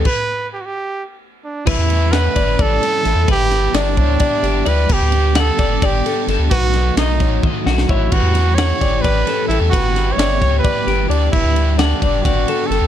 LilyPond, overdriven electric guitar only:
\new Staff \with { instrumentName = "Overdriven electric guitar" } { \time 7/8 \key a \mixolydian \tempo 4 = 130 r2. r8 | <a, e g cis' e'>8 <g cis' e'>8 <a, e g cis' e'>8 <g cis' e'>4. <e g cis' e'>8 | <g b e' g'>8 <b e' g'>8 <g b e' g'>8 <b e' g'>4. <g b e' g'>8 | <g b d' g'>8 <b d' g'>8 <g b d' g'>8 <b d' g'>4. <g b d' g'>8 |
<b, fis a dis' fis'>8 <a dis' fis'>8 <b, fis a dis' fis'>8 <a dis' fis'>4. <fis a dis' fis'>8 | <a, e g cis' g'>8 <g cis' g'>8 <a, e g cis' g'>8 <g cis' g'>4. <e g cis' g'>8 | <g b e' g'>8 <b e' g'>8 <g b e' g'>8 <b e' g'>4. <g b e' g'>8 | <g b d' g'>8 <b d' g'>8 <g b d' g'>8 <b d' g'>4. <g b d' g'>8 | }